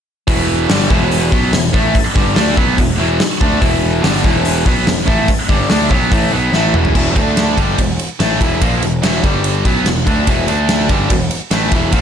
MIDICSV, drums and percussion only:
0, 0, Header, 1, 2, 480
1, 0, Start_track
1, 0, Key_signature, 1, "minor"
1, 0, Tempo, 416378
1, 323, Time_signature, 4, 2, 24, 8
1, 8011, Key_signature, 1, "minor"
1, 13849, End_track
2, 0, Start_track
2, 0, Title_t, "Drums"
2, 320, Note_on_c, 9, 36, 102
2, 322, Note_on_c, 9, 46, 60
2, 436, Note_off_c, 9, 36, 0
2, 437, Note_off_c, 9, 46, 0
2, 801, Note_on_c, 9, 46, 59
2, 803, Note_on_c, 9, 38, 116
2, 916, Note_off_c, 9, 46, 0
2, 918, Note_off_c, 9, 38, 0
2, 1043, Note_on_c, 9, 36, 99
2, 1158, Note_off_c, 9, 36, 0
2, 1285, Note_on_c, 9, 46, 63
2, 1400, Note_off_c, 9, 46, 0
2, 1524, Note_on_c, 9, 36, 106
2, 1639, Note_off_c, 9, 36, 0
2, 1762, Note_on_c, 9, 46, 58
2, 1765, Note_on_c, 9, 38, 111
2, 1878, Note_off_c, 9, 46, 0
2, 1880, Note_off_c, 9, 38, 0
2, 2007, Note_on_c, 9, 36, 105
2, 2122, Note_off_c, 9, 36, 0
2, 2248, Note_on_c, 9, 36, 100
2, 2250, Note_on_c, 9, 46, 62
2, 2363, Note_off_c, 9, 36, 0
2, 2365, Note_off_c, 9, 46, 0
2, 2487, Note_on_c, 9, 36, 107
2, 2602, Note_off_c, 9, 36, 0
2, 2722, Note_on_c, 9, 46, 56
2, 2725, Note_on_c, 9, 38, 118
2, 2837, Note_off_c, 9, 46, 0
2, 2840, Note_off_c, 9, 38, 0
2, 2967, Note_on_c, 9, 36, 104
2, 3083, Note_off_c, 9, 36, 0
2, 3208, Note_on_c, 9, 36, 97
2, 3208, Note_on_c, 9, 46, 58
2, 3323, Note_off_c, 9, 36, 0
2, 3323, Note_off_c, 9, 46, 0
2, 3688, Note_on_c, 9, 46, 54
2, 3690, Note_on_c, 9, 38, 104
2, 3803, Note_off_c, 9, 46, 0
2, 3806, Note_off_c, 9, 38, 0
2, 3932, Note_on_c, 9, 36, 105
2, 4047, Note_off_c, 9, 36, 0
2, 4172, Note_on_c, 9, 36, 109
2, 4180, Note_on_c, 9, 46, 57
2, 4288, Note_off_c, 9, 36, 0
2, 4295, Note_off_c, 9, 46, 0
2, 4657, Note_on_c, 9, 46, 58
2, 4659, Note_on_c, 9, 38, 111
2, 4772, Note_off_c, 9, 46, 0
2, 4775, Note_off_c, 9, 38, 0
2, 4892, Note_on_c, 9, 36, 97
2, 5007, Note_off_c, 9, 36, 0
2, 5130, Note_on_c, 9, 46, 64
2, 5245, Note_off_c, 9, 46, 0
2, 5372, Note_on_c, 9, 36, 108
2, 5487, Note_off_c, 9, 36, 0
2, 5614, Note_on_c, 9, 46, 64
2, 5616, Note_on_c, 9, 38, 109
2, 5729, Note_off_c, 9, 46, 0
2, 5732, Note_off_c, 9, 38, 0
2, 5853, Note_on_c, 9, 36, 103
2, 5968, Note_off_c, 9, 36, 0
2, 6088, Note_on_c, 9, 46, 61
2, 6091, Note_on_c, 9, 36, 100
2, 6203, Note_off_c, 9, 46, 0
2, 6206, Note_off_c, 9, 36, 0
2, 6331, Note_on_c, 9, 36, 104
2, 6446, Note_off_c, 9, 36, 0
2, 6566, Note_on_c, 9, 46, 61
2, 6569, Note_on_c, 9, 38, 101
2, 6682, Note_off_c, 9, 46, 0
2, 6684, Note_off_c, 9, 38, 0
2, 6810, Note_on_c, 9, 36, 105
2, 6925, Note_off_c, 9, 36, 0
2, 7050, Note_on_c, 9, 46, 59
2, 7052, Note_on_c, 9, 36, 112
2, 7165, Note_off_c, 9, 46, 0
2, 7167, Note_off_c, 9, 36, 0
2, 7531, Note_on_c, 9, 38, 59
2, 7647, Note_off_c, 9, 38, 0
2, 7769, Note_on_c, 9, 45, 89
2, 7884, Note_off_c, 9, 45, 0
2, 7895, Note_on_c, 9, 43, 87
2, 8010, Note_off_c, 9, 43, 0
2, 8013, Note_on_c, 9, 36, 98
2, 8013, Note_on_c, 9, 49, 93
2, 8128, Note_off_c, 9, 49, 0
2, 8129, Note_off_c, 9, 36, 0
2, 8254, Note_on_c, 9, 36, 105
2, 8257, Note_on_c, 9, 51, 66
2, 8370, Note_off_c, 9, 36, 0
2, 8372, Note_off_c, 9, 51, 0
2, 8496, Note_on_c, 9, 51, 87
2, 8498, Note_on_c, 9, 38, 106
2, 8611, Note_off_c, 9, 51, 0
2, 8614, Note_off_c, 9, 38, 0
2, 8733, Note_on_c, 9, 36, 90
2, 8736, Note_on_c, 9, 51, 67
2, 8849, Note_off_c, 9, 36, 0
2, 8851, Note_off_c, 9, 51, 0
2, 8974, Note_on_c, 9, 36, 83
2, 8974, Note_on_c, 9, 51, 91
2, 9089, Note_off_c, 9, 36, 0
2, 9089, Note_off_c, 9, 51, 0
2, 9215, Note_on_c, 9, 51, 69
2, 9330, Note_off_c, 9, 51, 0
2, 9453, Note_on_c, 9, 51, 91
2, 9455, Note_on_c, 9, 38, 104
2, 9568, Note_off_c, 9, 51, 0
2, 9570, Note_off_c, 9, 38, 0
2, 9693, Note_on_c, 9, 36, 104
2, 9700, Note_on_c, 9, 51, 73
2, 9809, Note_off_c, 9, 36, 0
2, 9816, Note_off_c, 9, 51, 0
2, 9932, Note_on_c, 9, 36, 105
2, 9932, Note_on_c, 9, 51, 89
2, 10047, Note_off_c, 9, 36, 0
2, 10047, Note_off_c, 9, 51, 0
2, 10173, Note_on_c, 9, 51, 68
2, 10288, Note_off_c, 9, 51, 0
2, 10414, Note_on_c, 9, 51, 91
2, 10416, Note_on_c, 9, 38, 113
2, 10529, Note_off_c, 9, 51, 0
2, 10532, Note_off_c, 9, 38, 0
2, 10648, Note_on_c, 9, 51, 56
2, 10649, Note_on_c, 9, 36, 98
2, 10764, Note_off_c, 9, 36, 0
2, 10764, Note_off_c, 9, 51, 0
2, 10884, Note_on_c, 9, 51, 82
2, 10999, Note_off_c, 9, 51, 0
2, 11125, Note_on_c, 9, 51, 66
2, 11127, Note_on_c, 9, 36, 98
2, 11240, Note_off_c, 9, 51, 0
2, 11242, Note_off_c, 9, 36, 0
2, 11365, Note_on_c, 9, 51, 88
2, 11368, Note_on_c, 9, 38, 108
2, 11481, Note_off_c, 9, 51, 0
2, 11483, Note_off_c, 9, 38, 0
2, 11607, Note_on_c, 9, 36, 101
2, 11611, Note_on_c, 9, 51, 63
2, 11722, Note_off_c, 9, 36, 0
2, 11726, Note_off_c, 9, 51, 0
2, 11841, Note_on_c, 9, 51, 82
2, 11844, Note_on_c, 9, 36, 101
2, 11956, Note_off_c, 9, 51, 0
2, 11959, Note_off_c, 9, 36, 0
2, 12081, Note_on_c, 9, 51, 61
2, 12196, Note_off_c, 9, 51, 0
2, 12320, Note_on_c, 9, 51, 82
2, 12323, Note_on_c, 9, 38, 113
2, 12436, Note_off_c, 9, 51, 0
2, 12438, Note_off_c, 9, 38, 0
2, 12557, Note_on_c, 9, 51, 63
2, 12559, Note_on_c, 9, 36, 93
2, 12672, Note_off_c, 9, 51, 0
2, 12674, Note_off_c, 9, 36, 0
2, 12797, Note_on_c, 9, 51, 91
2, 12798, Note_on_c, 9, 36, 90
2, 12912, Note_off_c, 9, 51, 0
2, 12913, Note_off_c, 9, 36, 0
2, 13035, Note_on_c, 9, 51, 69
2, 13150, Note_off_c, 9, 51, 0
2, 13269, Note_on_c, 9, 51, 88
2, 13272, Note_on_c, 9, 38, 106
2, 13385, Note_off_c, 9, 51, 0
2, 13387, Note_off_c, 9, 38, 0
2, 13506, Note_on_c, 9, 51, 66
2, 13510, Note_on_c, 9, 36, 97
2, 13621, Note_off_c, 9, 51, 0
2, 13626, Note_off_c, 9, 36, 0
2, 13747, Note_on_c, 9, 51, 91
2, 13750, Note_on_c, 9, 36, 100
2, 13849, Note_off_c, 9, 36, 0
2, 13849, Note_off_c, 9, 51, 0
2, 13849, End_track
0, 0, End_of_file